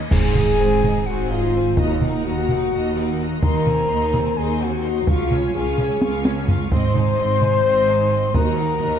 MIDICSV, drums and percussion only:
0, 0, Header, 1, 3, 480
1, 0, Start_track
1, 0, Tempo, 470219
1, 117, Time_signature, 7, 3, 24, 8
1, 9179, End_track
2, 0, Start_track
2, 0, Title_t, "Taiko and cinematic ensemble drums"
2, 115, Note_on_c, 9, 41, 103
2, 217, Note_off_c, 9, 41, 0
2, 357, Note_on_c, 9, 45, 54
2, 459, Note_off_c, 9, 45, 0
2, 852, Note_on_c, 9, 45, 56
2, 954, Note_off_c, 9, 45, 0
2, 1808, Note_on_c, 9, 41, 98
2, 1910, Note_off_c, 9, 41, 0
2, 2055, Note_on_c, 9, 45, 54
2, 2157, Note_off_c, 9, 45, 0
2, 2538, Note_on_c, 9, 45, 53
2, 2641, Note_off_c, 9, 45, 0
2, 3497, Note_on_c, 9, 41, 98
2, 3599, Note_off_c, 9, 41, 0
2, 3743, Note_on_c, 9, 45, 51
2, 3845, Note_off_c, 9, 45, 0
2, 4223, Note_on_c, 9, 45, 52
2, 4325, Note_off_c, 9, 45, 0
2, 5179, Note_on_c, 9, 41, 96
2, 5281, Note_off_c, 9, 41, 0
2, 5420, Note_on_c, 9, 45, 54
2, 5522, Note_off_c, 9, 45, 0
2, 5900, Note_on_c, 9, 45, 51
2, 6002, Note_off_c, 9, 45, 0
2, 6141, Note_on_c, 9, 48, 80
2, 6243, Note_off_c, 9, 48, 0
2, 6381, Note_on_c, 9, 48, 83
2, 6483, Note_off_c, 9, 48, 0
2, 6618, Note_on_c, 9, 43, 92
2, 6721, Note_off_c, 9, 43, 0
2, 6857, Note_on_c, 9, 41, 91
2, 6959, Note_off_c, 9, 41, 0
2, 7097, Note_on_c, 9, 45, 49
2, 7199, Note_off_c, 9, 45, 0
2, 7570, Note_on_c, 9, 45, 53
2, 7672, Note_off_c, 9, 45, 0
2, 8519, Note_on_c, 9, 41, 98
2, 8621, Note_off_c, 9, 41, 0
2, 9179, End_track
3, 0, Start_track
3, 0, Title_t, "Drums"
3, 122, Note_on_c, 9, 35, 70
3, 122, Note_on_c, 9, 49, 75
3, 224, Note_off_c, 9, 35, 0
3, 224, Note_off_c, 9, 49, 0
3, 9179, End_track
0, 0, End_of_file